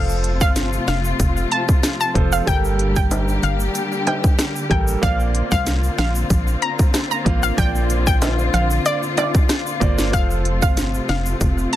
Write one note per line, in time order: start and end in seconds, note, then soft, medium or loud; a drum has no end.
0.00 0.43 F1 loud
0.00 2.45 C3 medium
0.00 0.87 F3 medium
0.00 2.45 F3 medium
0.00 2.45 A3 medium
0.00 0.87 F4 medium
0.00 2.45 F4 medium
0.00 0.88 A4 medium
0.00 0.88 C5 medium
0.00 0.18 F5 loud
0.09 shaker soft
0.24 closed hi-hat soft
0.41 0.79 G1 medium
0.41 0.53 F5 medium
0.41 kick medium
0.41 shaker medium
0.56 snare medium
0.56 closed hi-hat medium
0.56 shaker medium
0.73 shaker soft
0.88 1.14 F1 medium
0.88 1.01 F5 medium
0.88 snare loud
0.88 closed hi-hat soft
0.88 shaker soft
1.05 shaker medium
1.20 1.46 F1 loud
1.20 kick loud
1.20 closed hi-hat medium
1.20 shaker medium
1.37 shaker soft
1.51 1.65 A5 medium
1.51 closed hi-hat soft
1.69 kick loud
1.69 shaker medium
1.83 cross-stick medium
1.83 snare loud
1.83 closed hi-hat medium
1.83 shaker medium
2.01 2.13 A5 medium
2.01 shaker medium
2.14 2.41 F1 medium
2.14 2.39 F3 medium
2.14 2.40 F4 medium
2.14 2.40 A4 medium
2.14 2.41 C5 medium
2.14 kick medium
2.14 closed hi-hat medium
2.32 2.44 F5 medium
2.32 shaker medium
2.46 3.39 G1 loud
2.46 5.00 D3 medium
2.46 3.42 G3 medium
2.46 5.00 G3 medium
2.46 10.09 A#3 medium
2.46 3.43 G4 medium
2.46 5.00 G4 medium
2.46 3.43 A4 medium
2.46 3.44 A#4 medium
2.46 2.73 G5 loud
2.46 kick loud
2.46 closed hi-hat medium
2.46 shaker medium
2.65 shaker soft
2.79 closed hi-hat medium
2.96 3.08 G5 medium
2.96 kick medium
2.96 shaker medium
3.11 closed hi-hat medium
3.11 high timbale medium
3.11 shaker medium
3.28 shaker soft
3.43 3.69 G1 medium
3.43 3.57 F5 medium
3.43 closed hi-hat soft
3.43 shaker soft
3.60 shaker medium
3.75 closed hi-hat medium
3.75 shaker medium
3.92 shaker soft
4.07 4.21 G5 medium
4.07 closed hi-hat soft
4.07 high timbale medium
4.24 kick loud
4.24 shaker medium
4.39 cross-stick loud
4.39 snare loud
4.39 closed hi-hat medium
4.39 shaker medium
4.56 shaker medium
4.69 4.97 A1 loud
4.69 4.95 G3 medium
4.69 4.95 G4 medium
4.69 4.95 A4 medium
4.69 4.96 A#4 medium
4.69 4.84 G5 medium
4.69 kick medium
4.69 closed hi-hat medium
4.88 shaker medium
5.01 5.42 A#1 loud
5.01 10.09 D3 medium
5.01 5.98 A#3 medium
5.01 10.09 C4 medium
5.01 5.98 F4 medium
5.01 11.76 F4 medium
5.01 5.99 C5 medium
5.01 5.99 D5 medium
5.01 5.28 F5 loud
5.01 kick loud
5.01 closed hi-hat medium
5.01 shaker medium
5.20 shaker soft
5.35 closed hi-hat medium
5.51 5.90 C2 loud
5.51 5.64 F5 medium
5.51 kick medium
5.51 shaker medium
5.66 snare medium
5.66 closed hi-hat medium
5.66 shaker medium
5.84 shaker soft
5.98 6.24 A#1 loud
5.98 6.12 F5 medium
5.98 snare loud
5.98 closed hi-hat soft
5.98 shaker soft
6.15 shaker medium
6.30 6.56 A#1 loud
6.30 kick loud
6.30 closed hi-hat medium
6.30 shaker medium
6.47 shaker soft
6.62 6.76 A#5 medium
6.62 closed hi-hat medium
6.79 kick loud
6.79 shaker medium
6.94 cross-stick loud
6.94 snare loud
6.94 closed hi-hat medium
6.94 shaker medium
7.11 7.23 A#5 medium
7.11 shaker medium
7.25 7.52 A1 medium
7.25 7.50 A#3 medium
7.25 7.50 F4 medium
7.25 7.51 C5 medium
7.25 7.51 F5 medium
7.25 kick medium
7.25 closed hi-hat medium
7.43 7.55 F5 medium
7.43 shaker medium
7.57 8.50 A#1 loud
7.57 8.53 A#3 medium
7.57 8.53 F4 medium
7.57 8.54 C5 medium
7.57 8.54 D5 medium
7.57 7.83 G5 loud
7.57 kick loud
7.57 closed hi-hat medium
7.57 shaker medium
7.75 shaker soft
7.90 closed hi-hat soft
7.90 shaker medium
8.07 8.19 G5 medium
8.07 kick medium
8.07 shaker medium
8.22 snare medium
8.22 closed hi-hat medium
8.22 high timbale medium
8.22 shaker medium
8.39 shaker soft
8.54 8.80 A#1 loud
8.54 8.67 F5 medium
8.54 closed hi-hat soft
8.54 shaker soft
8.71 shaker medium
8.86 8.99 D5 medium
8.86 closed hi-hat medium
8.86 shaker medium
9.03 shaker soft
9.17 9.31 D5 medium
9.17 closed hi-hat soft
9.17 high timbale medium
9.17 shaker medium
9.34 kick loud
9.34 shaker medium
9.49 cross-stick loud
9.49 snare loud
9.49 closed hi-hat medium
9.49 shaker medium
9.67 shaker medium
9.80 10.15 G1 medium
9.80 10.05 A#3 medium
9.80 10.06 F4 medium
9.80 10.06 C5 medium
9.80 10.07 D5 loud
9.80 kick medium
9.80 closed hi-hat medium
9.80 shaker medium
9.98 snare medium
9.98 shaker medium
10.12 10.64 F1 loud
10.12 11.76 C3 medium
10.12 11.08 F3 medium
10.12 11.76 F3 medium
10.12 11.76 A3 medium
10.12 11.09 A4 medium
10.12 10.39 F5 loud
10.12 kick loud
10.12 closed hi-hat medium
10.12 shaker medium
10.31 shaker soft
10.45 closed hi-hat medium
10.62 11.00 G1 medium
10.62 10.74 F5 medium
10.62 kick medium
10.62 shaker medium
10.77 snare medium
10.77 closed hi-hat medium
10.77 shaker medium
10.94 shaker soft
11.09 11.35 F1 medium
11.09 11.23 F5 medium
11.09 snare loud
11.09 closed hi-hat soft
11.09 shaker soft
11.26 shaker medium
11.41 11.67 F1 loud
11.41 kick loud
11.41 closed hi-hat medium
11.41 shaker medium
11.58 shaker soft
11.73 11.76 A5 medium
11.73 closed hi-hat soft